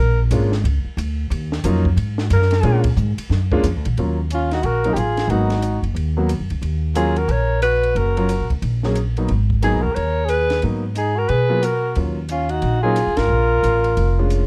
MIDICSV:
0, 0, Header, 1, 7, 480
1, 0, Start_track
1, 0, Key_signature, -6, "minor"
1, 0, Tempo, 333333
1, 1892, Time_signature, 4, 2, 24, 8
1, 20833, End_track
2, 0, Start_track
2, 0, Title_t, "Alto saxophone"
2, 0, Program_c, 0, 65
2, 0, Note_on_c, 0, 70, 99
2, 305, Note_off_c, 0, 70, 0
2, 3191, Note_on_c, 0, 66, 54
2, 3270, Note_off_c, 0, 66, 0
2, 3354, Note_on_c, 0, 70, 85
2, 4062, Note_off_c, 0, 70, 0
2, 6253, Note_on_c, 0, 65, 74
2, 6502, Note_off_c, 0, 65, 0
2, 6538, Note_on_c, 0, 66, 78
2, 6704, Note_on_c, 0, 70, 91
2, 6726, Note_off_c, 0, 66, 0
2, 7102, Note_on_c, 0, 67, 66
2, 7124, Note_off_c, 0, 70, 0
2, 7181, Note_on_c, 0, 68, 86
2, 7203, Note_off_c, 0, 67, 0
2, 7637, Note_on_c, 0, 66, 72
2, 7658, Note_off_c, 0, 68, 0
2, 8409, Note_off_c, 0, 66, 0
2, 10025, Note_on_c, 0, 68, 76
2, 10331, Note_on_c, 0, 70, 81
2, 10352, Note_off_c, 0, 68, 0
2, 10527, Note_on_c, 0, 73, 91
2, 10549, Note_off_c, 0, 70, 0
2, 10968, Note_off_c, 0, 73, 0
2, 10977, Note_on_c, 0, 71, 84
2, 11479, Note_on_c, 0, 70, 82
2, 11500, Note_off_c, 0, 71, 0
2, 12249, Note_off_c, 0, 70, 0
2, 13874, Note_on_c, 0, 68, 73
2, 14140, Note_on_c, 0, 70, 76
2, 14161, Note_off_c, 0, 68, 0
2, 14326, Note_on_c, 0, 73, 90
2, 14348, Note_off_c, 0, 70, 0
2, 14820, Note_on_c, 0, 71, 81
2, 14841, Note_off_c, 0, 73, 0
2, 15305, Note_off_c, 0, 71, 0
2, 15809, Note_on_c, 0, 68, 80
2, 16102, Note_on_c, 0, 70, 76
2, 16123, Note_off_c, 0, 68, 0
2, 16251, Note_on_c, 0, 71, 93
2, 16273, Note_off_c, 0, 70, 0
2, 16775, Note_on_c, 0, 70, 81
2, 16797, Note_off_c, 0, 71, 0
2, 17247, Note_off_c, 0, 70, 0
2, 17729, Note_on_c, 0, 65, 76
2, 17997, Note_on_c, 0, 66, 80
2, 18018, Note_off_c, 0, 65, 0
2, 18461, Note_off_c, 0, 66, 0
2, 18470, Note_on_c, 0, 68, 83
2, 18963, Note_on_c, 0, 70, 100
2, 18985, Note_off_c, 0, 68, 0
2, 20602, Note_off_c, 0, 70, 0
2, 20833, End_track
3, 0, Start_track
3, 0, Title_t, "Trumpet"
3, 0, Program_c, 1, 56
3, 6221, Note_on_c, 1, 61, 68
3, 6485, Note_off_c, 1, 61, 0
3, 6507, Note_on_c, 1, 63, 71
3, 6671, Note_on_c, 1, 66, 82
3, 6692, Note_off_c, 1, 63, 0
3, 7047, Note_on_c, 1, 63, 50
3, 7069, Note_off_c, 1, 66, 0
3, 7142, Note_on_c, 1, 65, 69
3, 7163, Note_off_c, 1, 63, 0
3, 7617, Note_on_c, 1, 63, 65
3, 7638, Note_off_c, 1, 65, 0
3, 8399, Note_off_c, 1, 63, 0
3, 10004, Note_on_c, 1, 65, 65
3, 10325, Note_on_c, 1, 66, 69
3, 10347, Note_off_c, 1, 65, 0
3, 10505, Note_on_c, 1, 70, 80
3, 10527, Note_off_c, 1, 66, 0
3, 10983, Note_off_c, 1, 70, 0
3, 10989, Note_on_c, 1, 66, 72
3, 11469, Note_off_c, 1, 66, 0
3, 11469, Note_on_c, 1, 66, 66
3, 12244, Note_off_c, 1, 66, 0
3, 13873, Note_on_c, 1, 63, 61
3, 14129, Note_on_c, 1, 66, 67
3, 14150, Note_off_c, 1, 63, 0
3, 14289, Note_on_c, 1, 70, 77
3, 14310, Note_off_c, 1, 66, 0
3, 14761, Note_on_c, 1, 68, 68
3, 14783, Note_off_c, 1, 70, 0
3, 15275, Note_off_c, 1, 68, 0
3, 15775, Note_on_c, 1, 63, 69
3, 16069, Note_on_c, 1, 66, 74
3, 16091, Note_off_c, 1, 63, 0
3, 16266, Note_on_c, 1, 68, 78
3, 16287, Note_off_c, 1, 66, 0
3, 16740, Note_on_c, 1, 66, 69
3, 16762, Note_off_c, 1, 68, 0
3, 17229, Note_off_c, 1, 66, 0
3, 17721, Note_on_c, 1, 61, 61
3, 18000, Note_on_c, 1, 63, 67
3, 18022, Note_off_c, 1, 61, 0
3, 18449, Note_off_c, 1, 63, 0
3, 18458, Note_on_c, 1, 65, 77
3, 18935, Note_off_c, 1, 65, 0
3, 18935, Note_on_c, 1, 65, 76
3, 20588, Note_off_c, 1, 65, 0
3, 20833, End_track
4, 0, Start_track
4, 0, Title_t, "Grand piano"
4, 0, Program_c, 2, 0
4, 455, Note_on_c, 2, 56, 62
4, 460, Note_on_c, 2, 58, 53
4, 461, Note_on_c, 2, 61, 56
4, 470, Note_on_c, 2, 62, 55
4, 474, Note_on_c, 2, 65, 65
4, 724, Note_off_c, 2, 56, 0
4, 727, Note_off_c, 2, 58, 0
4, 727, Note_off_c, 2, 61, 0
4, 732, Note_off_c, 2, 62, 0
4, 734, Note_off_c, 2, 65, 0
4, 2370, Note_on_c, 2, 54, 66
4, 2379, Note_on_c, 2, 58, 63
4, 2380, Note_on_c, 2, 61, 59
4, 2380, Note_on_c, 2, 65, 77
4, 2389, Note_on_c, 2, 63, 66
4, 2638, Note_off_c, 2, 54, 0
4, 2643, Note_off_c, 2, 58, 0
4, 2643, Note_off_c, 2, 61, 0
4, 2643, Note_off_c, 2, 65, 0
4, 2648, Note_off_c, 2, 63, 0
4, 3791, Note_on_c, 2, 56, 68
4, 3796, Note_on_c, 2, 61, 62
4, 3797, Note_on_c, 2, 58, 60
4, 3803, Note_on_c, 2, 62, 62
4, 3805, Note_on_c, 2, 65, 76
4, 4065, Note_off_c, 2, 56, 0
4, 4068, Note_off_c, 2, 58, 0
4, 4068, Note_off_c, 2, 61, 0
4, 4071, Note_off_c, 2, 62, 0
4, 4072, Note_off_c, 2, 65, 0
4, 5060, Note_on_c, 2, 56, 84
4, 5062, Note_on_c, 2, 58, 71
4, 5073, Note_on_c, 2, 61, 67
4, 5076, Note_on_c, 2, 62, 75
4, 5079, Note_on_c, 2, 65, 89
4, 5221, Note_off_c, 2, 56, 0
4, 5222, Note_off_c, 2, 58, 0
4, 5227, Note_off_c, 2, 61, 0
4, 5229, Note_off_c, 2, 62, 0
4, 5230, Note_off_c, 2, 65, 0
4, 5741, Note_on_c, 2, 58, 47
4, 5744, Note_on_c, 2, 61, 51
4, 5748, Note_on_c, 2, 54, 50
4, 5749, Note_on_c, 2, 65, 56
4, 5996, Note_off_c, 2, 58, 0
4, 5998, Note_off_c, 2, 61, 0
4, 6000, Note_off_c, 2, 54, 0
4, 6000, Note_off_c, 2, 65, 0
4, 6981, Note_on_c, 2, 54, 55
4, 6985, Note_on_c, 2, 58, 53
4, 6992, Note_on_c, 2, 61, 51
4, 6992, Note_on_c, 2, 63, 62
4, 7137, Note_off_c, 2, 54, 0
4, 7139, Note_off_c, 2, 58, 0
4, 7143, Note_off_c, 2, 61, 0
4, 7143, Note_off_c, 2, 63, 0
4, 7635, Note_on_c, 2, 58, 45
4, 7637, Note_on_c, 2, 54, 54
4, 7639, Note_on_c, 2, 59, 45
4, 7651, Note_on_c, 2, 63, 57
4, 7900, Note_off_c, 2, 58, 0
4, 7901, Note_off_c, 2, 54, 0
4, 7901, Note_off_c, 2, 59, 0
4, 7907, Note_off_c, 2, 63, 0
4, 8881, Note_on_c, 2, 54, 59
4, 8895, Note_on_c, 2, 58, 60
4, 8895, Note_on_c, 2, 59, 53
4, 8904, Note_on_c, 2, 66, 62
4, 9045, Note_off_c, 2, 54, 0
4, 9051, Note_off_c, 2, 58, 0
4, 9052, Note_off_c, 2, 59, 0
4, 9056, Note_off_c, 2, 66, 0
4, 10014, Note_on_c, 2, 54, 68
4, 10021, Note_on_c, 2, 58, 59
4, 10025, Note_on_c, 2, 65, 80
4, 10031, Note_on_c, 2, 61, 64
4, 10287, Note_off_c, 2, 54, 0
4, 10290, Note_off_c, 2, 58, 0
4, 10292, Note_off_c, 2, 65, 0
4, 10295, Note_off_c, 2, 61, 0
4, 11761, Note_on_c, 2, 54, 63
4, 11769, Note_on_c, 2, 58, 60
4, 11774, Note_on_c, 2, 61, 60
4, 11776, Note_on_c, 2, 65, 70
4, 11923, Note_off_c, 2, 54, 0
4, 11927, Note_off_c, 2, 58, 0
4, 11929, Note_off_c, 2, 61, 0
4, 11931, Note_off_c, 2, 65, 0
4, 12739, Note_on_c, 2, 54, 59
4, 12739, Note_on_c, 2, 58, 55
4, 12742, Note_on_c, 2, 61, 55
4, 12745, Note_on_c, 2, 68, 65
4, 12892, Note_off_c, 2, 58, 0
4, 12893, Note_off_c, 2, 54, 0
4, 12894, Note_off_c, 2, 61, 0
4, 12896, Note_off_c, 2, 68, 0
4, 13214, Note_on_c, 2, 58, 51
4, 13217, Note_on_c, 2, 59, 49
4, 13218, Note_on_c, 2, 54, 54
4, 13223, Note_on_c, 2, 63, 61
4, 13371, Note_off_c, 2, 58, 0
4, 13372, Note_off_c, 2, 59, 0
4, 13373, Note_off_c, 2, 54, 0
4, 13375, Note_off_c, 2, 63, 0
4, 13857, Note_on_c, 2, 58, 54
4, 13862, Note_on_c, 2, 54, 63
4, 13866, Note_on_c, 2, 59, 55
4, 13875, Note_on_c, 2, 63, 65
4, 14130, Note_off_c, 2, 58, 0
4, 14133, Note_off_c, 2, 54, 0
4, 14134, Note_off_c, 2, 59, 0
4, 14139, Note_off_c, 2, 63, 0
4, 15306, Note_on_c, 2, 58, 45
4, 15309, Note_on_c, 2, 54, 45
4, 15313, Note_on_c, 2, 63, 53
4, 15320, Note_on_c, 2, 59, 42
4, 15577, Note_off_c, 2, 58, 0
4, 15579, Note_off_c, 2, 54, 0
4, 15581, Note_off_c, 2, 63, 0
4, 15584, Note_off_c, 2, 59, 0
4, 16542, Note_on_c, 2, 54, 57
4, 16552, Note_on_c, 2, 58, 51
4, 16556, Note_on_c, 2, 65, 70
4, 16559, Note_on_c, 2, 59, 55
4, 16721, Note_off_c, 2, 54, 0
4, 16726, Note_off_c, 2, 58, 0
4, 16728, Note_off_c, 2, 65, 0
4, 16729, Note_off_c, 2, 59, 0
4, 17232, Note_on_c, 2, 54, 42
4, 17237, Note_on_c, 2, 61, 37
4, 17239, Note_on_c, 2, 58, 37
4, 17241, Note_on_c, 2, 65, 43
4, 17504, Note_off_c, 2, 54, 0
4, 17507, Note_off_c, 2, 61, 0
4, 17508, Note_off_c, 2, 58, 0
4, 17509, Note_off_c, 2, 65, 0
4, 18487, Note_on_c, 2, 54, 69
4, 18500, Note_on_c, 2, 61, 57
4, 18501, Note_on_c, 2, 58, 64
4, 18510, Note_on_c, 2, 63, 77
4, 18658, Note_off_c, 2, 54, 0
4, 18664, Note_off_c, 2, 61, 0
4, 18665, Note_off_c, 2, 58, 0
4, 18669, Note_off_c, 2, 63, 0
4, 20433, Note_on_c, 2, 56, 56
4, 20436, Note_on_c, 2, 61, 51
4, 20440, Note_on_c, 2, 62, 48
4, 20442, Note_on_c, 2, 65, 62
4, 20833, Note_off_c, 2, 56, 0
4, 20833, Note_off_c, 2, 61, 0
4, 20833, Note_off_c, 2, 62, 0
4, 20833, Note_off_c, 2, 65, 0
4, 20833, End_track
5, 0, Start_track
5, 0, Title_t, "Upright bass"
5, 0, Program_c, 3, 32
5, 0, Note_on_c, 3, 34, 89
5, 434, Note_off_c, 3, 34, 0
5, 443, Note_on_c, 3, 32, 88
5, 911, Note_off_c, 3, 32, 0
5, 920, Note_on_c, 3, 37, 88
5, 1204, Note_off_c, 3, 37, 0
5, 1397, Note_on_c, 3, 38, 90
5, 1869, Note_off_c, 3, 38, 0
5, 1875, Note_on_c, 3, 39, 91
5, 2348, Note_off_c, 3, 39, 0
5, 2357, Note_on_c, 3, 41, 99
5, 2820, Note_off_c, 3, 41, 0
5, 2829, Note_on_c, 3, 44, 86
5, 3302, Note_off_c, 3, 44, 0
5, 3316, Note_on_c, 3, 42, 98
5, 3778, Note_off_c, 3, 42, 0
5, 3787, Note_on_c, 3, 46, 91
5, 4259, Note_off_c, 3, 46, 0
5, 4271, Note_on_c, 3, 44, 100
5, 4553, Note_off_c, 3, 44, 0
5, 4744, Note_on_c, 3, 42, 84
5, 5215, Note_off_c, 3, 42, 0
5, 5232, Note_on_c, 3, 41, 91
5, 5419, Note_off_c, 3, 41, 0
5, 5419, Note_on_c, 3, 38, 61
5, 5546, Note_off_c, 3, 38, 0
5, 5554, Note_on_c, 3, 34, 69
5, 5703, Note_off_c, 3, 34, 0
5, 5727, Note_on_c, 3, 39, 75
5, 6630, Note_off_c, 3, 39, 0
5, 6673, Note_on_c, 3, 34, 73
5, 7117, Note_off_c, 3, 34, 0
5, 7129, Note_on_c, 3, 33, 73
5, 7583, Note_off_c, 3, 33, 0
5, 7595, Note_on_c, 3, 32, 79
5, 8332, Note_off_c, 3, 32, 0
5, 8386, Note_on_c, 3, 30, 65
5, 8553, Note_off_c, 3, 30, 0
5, 8561, Note_on_c, 3, 39, 83
5, 9166, Note_off_c, 3, 39, 0
5, 9204, Note_on_c, 3, 42, 57
5, 9361, Note_off_c, 3, 42, 0
5, 9372, Note_on_c, 3, 37, 64
5, 9518, Note_off_c, 3, 37, 0
5, 9526, Note_on_c, 3, 39, 82
5, 10444, Note_off_c, 3, 39, 0
5, 10482, Note_on_c, 3, 34, 82
5, 11402, Note_off_c, 3, 34, 0
5, 11450, Note_on_c, 3, 30, 81
5, 12050, Note_off_c, 3, 30, 0
5, 12103, Note_on_c, 3, 34, 55
5, 12251, Note_off_c, 3, 34, 0
5, 12268, Note_on_c, 3, 37, 66
5, 12404, Note_off_c, 3, 37, 0
5, 12413, Note_on_c, 3, 34, 80
5, 13330, Note_off_c, 3, 34, 0
5, 13384, Note_on_c, 3, 32, 78
5, 13980, Note_off_c, 3, 32, 0
5, 14031, Note_on_c, 3, 35, 52
5, 14164, Note_off_c, 3, 35, 0
5, 14173, Note_on_c, 3, 39, 59
5, 14327, Note_off_c, 3, 39, 0
5, 14351, Note_on_c, 3, 39, 73
5, 15263, Note_off_c, 3, 39, 0
5, 15310, Note_on_c, 3, 44, 81
5, 16225, Note_off_c, 3, 44, 0
5, 16264, Note_on_c, 3, 47, 80
5, 17184, Note_off_c, 3, 47, 0
5, 17223, Note_on_c, 3, 39, 85
5, 18146, Note_off_c, 3, 39, 0
5, 18175, Note_on_c, 3, 34, 81
5, 18785, Note_off_c, 3, 34, 0
5, 18820, Note_on_c, 3, 37, 57
5, 18963, Note_off_c, 3, 37, 0
5, 18971, Note_on_c, 3, 32, 63
5, 19121, Note_off_c, 3, 32, 0
5, 19130, Note_on_c, 3, 34, 84
5, 19595, Note_off_c, 3, 34, 0
5, 19626, Note_on_c, 3, 33, 72
5, 20084, Note_off_c, 3, 33, 0
5, 20118, Note_on_c, 3, 29, 77
5, 20833, Note_off_c, 3, 29, 0
5, 20833, End_track
6, 0, Start_track
6, 0, Title_t, "Muted upright bass strokes"
6, 1217, Note_on_c, 9, 29, 36
6, 1361, Note_off_c, 9, 29, 0
6, 4580, Note_on_c, 9, 29, 40
6, 4724, Note_off_c, 9, 29, 0
6, 20833, End_track
7, 0, Start_track
7, 0, Title_t, "Drums"
7, 443, Note_on_c, 9, 44, 53
7, 443, Note_on_c, 9, 51, 74
7, 587, Note_off_c, 9, 44, 0
7, 587, Note_off_c, 9, 51, 0
7, 749, Note_on_c, 9, 38, 49
7, 893, Note_off_c, 9, 38, 0
7, 937, Note_on_c, 9, 51, 62
7, 1081, Note_off_c, 9, 51, 0
7, 1416, Note_on_c, 9, 44, 54
7, 1416, Note_on_c, 9, 51, 69
7, 1560, Note_off_c, 9, 44, 0
7, 1560, Note_off_c, 9, 51, 0
7, 1892, Note_on_c, 9, 51, 63
7, 2036, Note_off_c, 9, 51, 0
7, 2191, Note_on_c, 9, 38, 55
7, 2335, Note_off_c, 9, 38, 0
7, 2359, Note_on_c, 9, 44, 64
7, 2359, Note_on_c, 9, 51, 73
7, 2503, Note_off_c, 9, 44, 0
7, 2503, Note_off_c, 9, 51, 0
7, 2666, Note_on_c, 9, 36, 49
7, 2810, Note_off_c, 9, 36, 0
7, 2842, Note_on_c, 9, 51, 62
7, 2986, Note_off_c, 9, 51, 0
7, 3140, Note_on_c, 9, 38, 63
7, 3284, Note_off_c, 9, 38, 0
7, 3316, Note_on_c, 9, 44, 67
7, 3316, Note_on_c, 9, 51, 69
7, 3460, Note_off_c, 9, 44, 0
7, 3460, Note_off_c, 9, 51, 0
7, 3482, Note_on_c, 9, 38, 30
7, 3610, Note_on_c, 9, 51, 52
7, 3626, Note_off_c, 9, 38, 0
7, 3636, Note_on_c, 9, 38, 46
7, 3754, Note_off_c, 9, 51, 0
7, 3780, Note_off_c, 9, 38, 0
7, 3788, Note_on_c, 9, 51, 57
7, 3932, Note_off_c, 9, 51, 0
7, 4087, Note_on_c, 9, 51, 70
7, 4097, Note_on_c, 9, 36, 72
7, 4231, Note_off_c, 9, 51, 0
7, 4241, Note_off_c, 9, 36, 0
7, 4276, Note_on_c, 9, 44, 67
7, 4420, Note_off_c, 9, 44, 0
7, 4582, Note_on_c, 9, 51, 74
7, 4726, Note_off_c, 9, 51, 0
7, 4767, Note_on_c, 9, 38, 40
7, 4911, Note_off_c, 9, 38, 0
7, 5063, Note_on_c, 9, 36, 62
7, 5207, Note_off_c, 9, 36, 0
7, 5236, Note_on_c, 9, 44, 61
7, 5236, Note_on_c, 9, 51, 80
7, 5380, Note_off_c, 9, 44, 0
7, 5380, Note_off_c, 9, 51, 0
7, 5548, Note_on_c, 9, 51, 51
7, 5692, Note_off_c, 9, 51, 0
7, 5724, Note_on_c, 9, 51, 46
7, 5868, Note_off_c, 9, 51, 0
7, 6199, Note_on_c, 9, 44, 59
7, 6199, Note_on_c, 9, 51, 63
7, 6343, Note_off_c, 9, 44, 0
7, 6343, Note_off_c, 9, 51, 0
7, 6499, Note_on_c, 9, 51, 41
7, 6507, Note_on_c, 9, 38, 33
7, 6643, Note_off_c, 9, 51, 0
7, 6651, Note_off_c, 9, 38, 0
7, 6670, Note_on_c, 9, 51, 49
7, 6814, Note_off_c, 9, 51, 0
7, 6973, Note_on_c, 9, 51, 42
7, 7117, Note_off_c, 9, 51, 0
7, 7147, Note_on_c, 9, 44, 57
7, 7147, Note_on_c, 9, 51, 59
7, 7291, Note_off_c, 9, 44, 0
7, 7291, Note_off_c, 9, 51, 0
7, 7449, Note_on_c, 9, 51, 40
7, 7456, Note_on_c, 9, 38, 44
7, 7593, Note_off_c, 9, 51, 0
7, 7600, Note_off_c, 9, 38, 0
7, 7630, Note_on_c, 9, 51, 46
7, 7774, Note_off_c, 9, 51, 0
7, 7922, Note_on_c, 9, 51, 42
7, 7929, Note_on_c, 9, 38, 33
7, 8066, Note_off_c, 9, 51, 0
7, 8073, Note_off_c, 9, 38, 0
7, 8098, Note_on_c, 9, 44, 53
7, 8098, Note_on_c, 9, 51, 60
7, 8242, Note_off_c, 9, 44, 0
7, 8242, Note_off_c, 9, 51, 0
7, 8403, Note_on_c, 9, 51, 41
7, 8547, Note_off_c, 9, 51, 0
7, 8588, Note_on_c, 9, 51, 53
7, 8732, Note_off_c, 9, 51, 0
7, 9060, Note_on_c, 9, 44, 54
7, 9060, Note_on_c, 9, 51, 62
7, 9204, Note_off_c, 9, 44, 0
7, 9204, Note_off_c, 9, 51, 0
7, 9362, Note_on_c, 9, 51, 39
7, 9506, Note_off_c, 9, 51, 0
7, 9541, Note_on_c, 9, 51, 48
7, 9685, Note_off_c, 9, 51, 0
7, 10014, Note_on_c, 9, 44, 52
7, 10014, Note_on_c, 9, 51, 68
7, 10158, Note_off_c, 9, 44, 0
7, 10158, Note_off_c, 9, 51, 0
7, 10315, Note_on_c, 9, 51, 40
7, 10459, Note_off_c, 9, 51, 0
7, 10492, Note_on_c, 9, 51, 56
7, 10636, Note_off_c, 9, 51, 0
7, 10973, Note_on_c, 9, 44, 51
7, 10973, Note_on_c, 9, 51, 61
7, 11117, Note_off_c, 9, 44, 0
7, 11117, Note_off_c, 9, 51, 0
7, 11281, Note_on_c, 9, 51, 38
7, 11425, Note_off_c, 9, 51, 0
7, 11462, Note_on_c, 9, 51, 50
7, 11606, Note_off_c, 9, 51, 0
7, 11765, Note_on_c, 9, 51, 42
7, 11909, Note_off_c, 9, 51, 0
7, 11936, Note_on_c, 9, 44, 57
7, 11936, Note_on_c, 9, 51, 62
7, 12080, Note_off_c, 9, 44, 0
7, 12080, Note_off_c, 9, 51, 0
7, 12242, Note_on_c, 9, 36, 45
7, 12244, Note_on_c, 9, 51, 40
7, 12386, Note_off_c, 9, 36, 0
7, 12388, Note_off_c, 9, 51, 0
7, 12417, Note_on_c, 9, 51, 52
7, 12561, Note_off_c, 9, 51, 0
7, 12720, Note_on_c, 9, 38, 37
7, 12864, Note_off_c, 9, 38, 0
7, 12894, Note_on_c, 9, 44, 47
7, 12894, Note_on_c, 9, 51, 60
7, 13038, Note_off_c, 9, 44, 0
7, 13038, Note_off_c, 9, 51, 0
7, 13200, Note_on_c, 9, 51, 38
7, 13344, Note_off_c, 9, 51, 0
7, 13369, Note_on_c, 9, 51, 51
7, 13513, Note_off_c, 9, 51, 0
7, 13680, Note_on_c, 9, 36, 53
7, 13824, Note_off_c, 9, 36, 0
7, 13860, Note_on_c, 9, 44, 53
7, 13860, Note_on_c, 9, 51, 67
7, 14004, Note_off_c, 9, 44, 0
7, 14004, Note_off_c, 9, 51, 0
7, 14345, Note_on_c, 9, 51, 56
7, 14489, Note_off_c, 9, 51, 0
7, 14810, Note_on_c, 9, 44, 49
7, 14810, Note_on_c, 9, 51, 64
7, 14954, Note_off_c, 9, 44, 0
7, 14954, Note_off_c, 9, 51, 0
7, 15118, Note_on_c, 9, 51, 42
7, 15125, Note_on_c, 9, 38, 41
7, 15262, Note_off_c, 9, 51, 0
7, 15269, Note_off_c, 9, 38, 0
7, 15293, Note_on_c, 9, 51, 47
7, 15437, Note_off_c, 9, 51, 0
7, 15774, Note_on_c, 9, 44, 51
7, 15774, Note_on_c, 9, 51, 58
7, 15918, Note_off_c, 9, 44, 0
7, 15918, Note_off_c, 9, 51, 0
7, 16252, Note_on_c, 9, 51, 51
7, 16396, Note_off_c, 9, 51, 0
7, 16742, Note_on_c, 9, 44, 58
7, 16742, Note_on_c, 9, 51, 63
7, 16886, Note_off_c, 9, 44, 0
7, 16886, Note_off_c, 9, 51, 0
7, 17214, Note_on_c, 9, 51, 52
7, 17358, Note_off_c, 9, 51, 0
7, 17692, Note_on_c, 9, 44, 54
7, 17692, Note_on_c, 9, 51, 64
7, 17836, Note_off_c, 9, 44, 0
7, 17836, Note_off_c, 9, 51, 0
7, 17987, Note_on_c, 9, 51, 42
7, 18131, Note_off_c, 9, 51, 0
7, 18170, Note_on_c, 9, 51, 50
7, 18314, Note_off_c, 9, 51, 0
7, 18661, Note_on_c, 9, 44, 52
7, 18661, Note_on_c, 9, 51, 64
7, 18805, Note_off_c, 9, 44, 0
7, 18805, Note_off_c, 9, 51, 0
7, 18961, Note_on_c, 9, 51, 61
7, 18968, Note_on_c, 9, 38, 72
7, 19105, Note_off_c, 9, 51, 0
7, 19112, Note_off_c, 9, 38, 0
7, 19636, Note_on_c, 9, 44, 52
7, 19636, Note_on_c, 9, 51, 60
7, 19780, Note_off_c, 9, 44, 0
7, 19780, Note_off_c, 9, 51, 0
7, 19933, Note_on_c, 9, 51, 42
7, 20077, Note_off_c, 9, 51, 0
7, 20117, Note_on_c, 9, 51, 55
7, 20261, Note_off_c, 9, 51, 0
7, 20597, Note_on_c, 9, 44, 52
7, 20597, Note_on_c, 9, 51, 59
7, 20741, Note_off_c, 9, 44, 0
7, 20741, Note_off_c, 9, 51, 0
7, 20833, End_track
0, 0, End_of_file